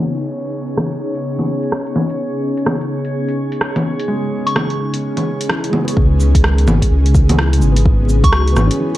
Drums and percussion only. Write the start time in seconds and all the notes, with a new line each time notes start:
0.21 closed hi-hat
0.68 closed hi-hat
0.77 cross-stick, low bongo
0.92 closed hi-hat
1.15 closed hi-hat
1.39 closed hi-hat, low bongo
1.63 closed hi-hat
1.72 cross-stick
1.87 closed hi-hat
1.96 low bongo
2.10 closed hi-hat
2.57 closed hi-hat
2.66 cross-stick, low bongo
2.81 closed hi-hat
3.05 closed hi-hat
3.28 closed hi-hat
3.52 closed hi-hat
3.61 cross-stick
3.76 closed hi-hat, low bongo
3.99 closed hi-hat
4.47 closed hi-hat
4.56 cross-stick, low bongo
4.70 closed hi-hat
4.94 closed hi-hat
5.17 closed hi-hat, low bongo
5.41 closed hi-hat
5.49 cross-stick
5.64 closed hi-hat
5.73 low bongo
5.88 closed hi-hat
5.97 kick
6.20 cabasa
6.35 kick, closed hi-hat
6.44 cross-stick
6.58 closed hi-hat
6.68 low bongo, cabasa
6.82 kick, closed hi-hat
7.06 closed hi-hat
7.15 kick, cabasa
7.29 closed hi-hat, low bongo
7.39 cross-stick
7.53 closed hi-hat
7.62 cabasa
7.76 closed hi-hat
7.86 kick
8.09 cabasa
8.24 kick, closed hi-hat
8.33 cross-stick
8.48 closed hi-hat
8.57 cross-stick, low bongo, cabasa
8.71 closed hi-hat